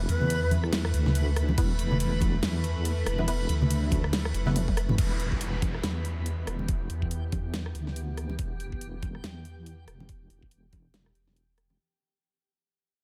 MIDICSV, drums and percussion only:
0, 0, Header, 1, 2, 480
1, 0, Start_track
1, 0, Key_signature, 1, "minor"
1, 0, Tempo, 425532
1, 1780, Time_signature, 4, 2, 24, 8
1, 14705, End_track
2, 0, Start_track
2, 0, Title_t, "Drums"
2, 100, Note_on_c, 9, 42, 51
2, 106, Note_on_c, 9, 63, 59
2, 213, Note_off_c, 9, 42, 0
2, 218, Note_off_c, 9, 63, 0
2, 240, Note_on_c, 9, 64, 75
2, 340, Note_on_c, 9, 42, 78
2, 340, Note_on_c, 9, 49, 46
2, 352, Note_off_c, 9, 64, 0
2, 453, Note_off_c, 9, 42, 0
2, 453, Note_off_c, 9, 49, 0
2, 578, Note_on_c, 9, 63, 88
2, 579, Note_on_c, 9, 42, 50
2, 691, Note_off_c, 9, 42, 0
2, 691, Note_off_c, 9, 63, 0
2, 717, Note_on_c, 9, 37, 63
2, 818, Note_on_c, 9, 38, 117
2, 818, Note_on_c, 9, 42, 78
2, 818, Note_on_c, 9, 49, 67
2, 829, Note_off_c, 9, 37, 0
2, 931, Note_off_c, 9, 38, 0
2, 931, Note_off_c, 9, 42, 0
2, 931, Note_off_c, 9, 49, 0
2, 956, Note_on_c, 9, 37, 83
2, 1058, Note_on_c, 9, 42, 52
2, 1068, Note_off_c, 9, 37, 0
2, 1171, Note_off_c, 9, 42, 0
2, 1197, Note_on_c, 9, 64, 85
2, 1198, Note_on_c, 9, 38, 36
2, 1300, Note_on_c, 9, 42, 77
2, 1300, Note_on_c, 9, 49, 49
2, 1310, Note_off_c, 9, 64, 0
2, 1311, Note_off_c, 9, 38, 0
2, 1412, Note_off_c, 9, 42, 0
2, 1412, Note_off_c, 9, 49, 0
2, 1539, Note_on_c, 9, 37, 83
2, 1539, Note_on_c, 9, 42, 52
2, 1652, Note_off_c, 9, 37, 0
2, 1652, Note_off_c, 9, 42, 0
2, 1677, Note_on_c, 9, 63, 89
2, 1780, Note_on_c, 9, 36, 123
2, 1780, Note_on_c, 9, 42, 80
2, 1780, Note_on_c, 9, 49, 66
2, 1790, Note_off_c, 9, 63, 0
2, 1892, Note_off_c, 9, 42, 0
2, 1892, Note_off_c, 9, 49, 0
2, 1893, Note_off_c, 9, 36, 0
2, 2019, Note_on_c, 9, 42, 54
2, 2131, Note_off_c, 9, 42, 0
2, 2159, Note_on_c, 9, 64, 90
2, 2258, Note_on_c, 9, 42, 80
2, 2258, Note_on_c, 9, 49, 49
2, 2272, Note_off_c, 9, 64, 0
2, 2371, Note_off_c, 9, 42, 0
2, 2371, Note_off_c, 9, 49, 0
2, 2489, Note_on_c, 9, 63, 89
2, 2499, Note_on_c, 9, 42, 52
2, 2500, Note_on_c, 9, 36, 61
2, 2601, Note_off_c, 9, 63, 0
2, 2612, Note_off_c, 9, 42, 0
2, 2613, Note_off_c, 9, 36, 0
2, 2738, Note_on_c, 9, 38, 120
2, 2738, Note_on_c, 9, 42, 81
2, 2738, Note_on_c, 9, 49, 70
2, 2851, Note_off_c, 9, 38, 0
2, 2851, Note_off_c, 9, 42, 0
2, 2851, Note_off_c, 9, 49, 0
2, 2978, Note_on_c, 9, 42, 52
2, 3090, Note_off_c, 9, 42, 0
2, 3218, Note_on_c, 9, 42, 81
2, 3218, Note_on_c, 9, 49, 50
2, 3330, Note_off_c, 9, 42, 0
2, 3330, Note_off_c, 9, 49, 0
2, 3457, Note_on_c, 9, 37, 84
2, 3457, Note_on_c, 9, 42, 51
2, 3570, Note_off_c, 9, 37, 0
2, 3570, Note_off_c, 9, 42, 0
2, 3592, Note_on_c, 9, 63, 91
2, 3698, Note_on_c, 9, 42, 87
2, 3698, Note_on_c, 9, 49, 71
2, 3704, Note_off_c, 9, 63, 0
2, 3811, Note_off_c, 9, 42, 0
2, 3811, Note_off_c, 9, 49, 0
2, 3939, Note_on_c, 9, 42, 56
2, 3942, Note_on_c, 9, 63, 63
2, 4051, Note_off_c, 9, 42, 0
2, 4055, Note_off_c, 9, 63, 0
2, 4080, Note_on_c, 9, 64, 95
2, 4179, Note_on_c, 9, 42, 82
2, 4179, Note_on_c, 9, 49, 49
2, 4193, Note_off_c, 9, 64, 0
2, 4292, Note_off_c, 9, 42, 0
2, 4292, Note_off_c, 9, 49, 0
2, 4414, Note_on_c, 9, 63, 90
2, 4420, Note_on_c, 9, 36, 63
2, 4420, Note_on_c, 9, 42, 54
2, 4527, Note_off_c, 9, 63, 0
2, 4533, Note_off_c, 9, 36, 0
2, 4533, Note_off_c, 9, 42, 0
2, 4558, Note_on_c, 9, 37, 66
2, 4659, Note_on_c, 9, 38, 121
2, 4659, Note_on_c, 9, 42, 81
2, 4659, Note_on_c, 9, 49, 72
2, 4671, Note_off_c, 9, 37, 0
2, 4772, Note_off_c, 9, 38, 0
2, 4772, Note_off_c, 9, 42, 0
2, 4772, Note_off_c, 9, 49, 0
2, 4798, Note_on_c, 9, 37, 83
2, 4901, Note_on_c, 9, 42, 53
2, 4911, Note_off_c, 9, 37, 0
2, 5014, Note_off_c, 9, 42, 0
2, 5030, Note_on_c, 9, 64, 99
2, 5039, Note_on_c, 9, 38, 36
2, 5141, Note_on_c, 9, 42, 87
2, 5141, Note_on_c, 9, 48, 66
2, 5141, Note_on_c, 9, 49, 51
2, 5143, Note_off_c, 9, 64, 0
2, 5152, Note_off_c, 9, 38, 0
2, 5254, Note_off_c, 9, 42, 0
2, 5254, Note_off_c, 9, 48, 0
2, 5254, Note_off_c, 9, 49, 0
2, 5280, Note_on_c, 9, 36, 64
2, 5280, Note_on_c, 9, 48, 63
2, 5382, Note_on_c, 9, 37, 83
2, 5382, Note_on_c, 9, 42, 55
2, 5393, Note_off_c, 9, 36, 0
2, 5393, Note_off_c, 9, 48, 0
2, 5495, Note_off_c, 9, 37, 0
2, 5495, Note_off_c, 9, 42, 0
2, 5519, Note_on_c, 9, 45, 81
2, 5519, Note_on_c, 9, 63, 81
2, 5621, Note_on_c, 9, 42, 80
2, 5621, Note_on_c, 9, 49, 87
2, 5622, Note_on_c, 9, 36, 117
2, 5631, Note_off_c, 9, 63, 0
2, 5632, Note_off_c, 9, 45, 0
2, 5734, Note_off_c, 9, 42, 0
2, 5734, Note_off_c, 9, 49, 0
2, 5735, Note_off_c, 9, 36, 0
2, 5862, Note_on_c, 9, 42, 54
2, 5975, Note_off_c, 9, 42, 0
2, 6001, Note_on_c, 9, 36, 59
2, 6101, Note_on_c, 9, 42, 79
2, 6114, Note_off_c, 9, 36, 0
2, 6214, Note_off_c, 9, 42, 0
2, 6341, Note_on_c, 9, 42, 54
2, 6341, Note_on_c, 9, 63, 85
2, 6343, Note_on_c, 9, 36, 110
2, 6454, Note_off_c, 9, 42, 0
2, 6454, Note_off_c, 9, 63, 0
2, 6455, Note_off_c, 9, 36, 0
2, 6480, Note_on_c, 9, 37, 59
2, 6582, Note_on_c, 9, 38, 115
2, 6582, Note_on_c, 9, 42, 79
2, 6593, Note_off_c, 9, 37, 0
2, 6695, Note_off_c, 9, 38, 0
2, 6695, Note_off_c, 9, 42, 0
2, 6822, Note_on_c, 9, 42, 52
2, 6935, Note_off_c, 9, 42, 0
2, 7061, Note_on_c, 9, 42, 83
2, 7174, Note_off_c, 9, 42, 0
2, 7301, Note_on_c, 9, 37, 76
2, 7301, Note_on_c, 9, 42, 53
2, 7414, Note_off_c, 9, 37, 0
2, 7414, Note_off_c, 9, 42, 0
2, 7435, Note_on_c, 9, 63, 84
2, 7540, Note_on_c, 9, 42, 82
2, 7542, Note_on_c, 9, 36, 124
2, 7547, Note_off_c, 9, 63, 0
2, 7653, Note_off_c, 9, 42, 0
2, 7655, Note_off_c, 9, 36, 0
2, 7781, Note_on_c, 9, 42, 55
2, 7894, Note_off_c, 9, 42, 0
2, 7921, Note_on_c, 9, 36, 61
2, 8020, Note_on_c, 9, 42, 82
2, 8034, Note_off_c, 9, 36, 0
2, 8133, Note_off_c, 9, 42, 0
2, 8261, Note_on_c, 9, 42, 55
2, 8262, Note_on_c, 9, 36, 108
2, 8262, Note_on_c, 9, 63, 100
2, 8373, Note_off_c, 9, 42, 0
2, 8375, Note_off_c, 9, 36, 0
2, 8375, Note_off_c, 9, 63, 0
2, 8501, Note_on_c, 9, 38, 123
2, 8501, Note_on_c, 9, 42, 84
2, 8614, Note_off_c, 9, 38, 0
2, 8614, Note_off_c, 9, 42, 0
2, 8640, Note_on_c, 9, 37, 75
2, 8742, Note_on_c, 9, 42, 53
2, 8753, Note_off_c, 9, 37, 0
2, 8855, Note_off_c, 9, 42, 0
2, 8880, Note_on_c, 9, 38, 38
2, 8981, Note_on_c, 9, 42, 85
2, 8993, Note_off_c, 9, 38, 0
2, 9094, Note_off_c, 9, 42, 0
2, 9221, Note_on_c, 9, 37, 71
2, 9221, Note_on_c, 9, 42, 54
2, 9334, Note_off_c, 9, 37, 0
2, 9334, Note_off_c, 9, 42, 0
2, 9357, Note_on_c, 9, 63, 98
2, 9461, Note_on_c, 9, 42, 83
2, 9462, Note_on_c, 9, 36, 125
2, 9469, Note_off_c, 9, 63, 0
2, 9573, Note_off_c, 9, 42, 0
2, 9575, Note_off_c, 9, 36, 0
2, 9701, Note_on_c, 9, 42, 51
2, 9813, Note_off_c, 9, 42, 0
2, 9840, Note_on_c, 9, 36, 61
2, 9941, Note_on_c, 9, 42, 77
2, 9953, Note_off_c, 9, 36, 0
2, 10054, Note_off_c, 9, 42, 0
2, 10179, Note_on_c, 9, 63, 86
2, 10181, Note_on_c, 9, 42, 53
2, 10182, Note_on_c, 9, 36, 110
2, 10292, Note_off_c, 9, 63, 0
2, 10294, Note_off_c, 9, 42, 0
2, 10295, Note_off_c, 9, 36, 0
2, 10319, Note_on_c, 9, 37, 57
2, 10421, Note_on_c, 9, 38, 124
2, 10421, Note_on_c, 9, 42, 78
2, 10432, Note_off_c, 9, 37, 0
2, 10534, Note_off_c, 9, 38, 0
2, 10534, Note_off_c, 9, 42, 0
2, 10660, Note_on_c, 9, 42, 50
2, 10773, Note_off_c, 9, 42, 0
2, 10900, Note_on_c, 9, 42, 79
2, 11013, Note_off_c, 9, 42, 0
2, 11141, Note_on_c, 9, 37, 73
2, 11141, Note_on_c, 9, 42, 51
2, 11254, Note_off_c, 9, 37, 0
2, 11254, Note_off_c, 9, 42, 0
2, 11284, Note_on_c, 9, 63, 99
2, 11380, Note_on_c, 9, 42, 72
2, 11381, Note_on_c, 9, 36, 118
2, 11397, Note_off_c, 9, 63, 0
2, 11493, Note_off_c, 9, 42, 0
2, 11494, Note_off_c, 9, 36, 0
2, 11620, Note_on_c, 9, 42, 50
2, 11732, Note_off_c, 9, 42, 0
2, 11760, Note_on_c, 9, 36, 57
2, 11859, Note_on_c, 9, 42, 73
2, 11873, Note_off_c, 9, 36, 0
2, 11971, Note_off_c, 9, 42, 0
2, 12099, Note_on_c, 9, 42, 50
2, 12099, Note_on_c, 9, 63, 95
2, 12102, Note_on_c, 9, 36, 101
2, 12212, Note_off_c, 9, 42, 0
2, 12212, Note_off_c, 9, 63, 0
2, 12214, Note_off_c, 9, 36, 0
2, 12340, Note_on_c, 9, 38, 116
2, 12340, Note_on_c, 9, 42, 76
2, 12452, Note_off_c, 9, 38, 0
2, 12452, Note_off_c, 9, 42, 0
2, 12478, Note_on_c, 9, 37, 71
2, 12580, Note_on_c, 9, 42, 49
2, 12591, Note_off_c, 9, 37, 0
2, 12693, Note_off_c, 9, 42, 0
2, 12718, Note_on_c, 9, 38, 35
2, 12819, Note_on_c, 9, 42, 76
2, 12831, Note_off_c, 9, 38, 0
2, 12932, Note_off_c, 9, 42, 0
2, 13059, Note_on_c, 9, 37, 71
2, 13059, Note_on_c, 9, 42, 50
2, 13172, Note_off_c, 9, 37, 0
2, 13172, Note_off_c, 9, 42, 0
2, 13198, Note_on_c, 9, 63, 95
2, 13311, Note_off_c, 9, 63, 0
2, 14705, End_track
0, 0, End_of_file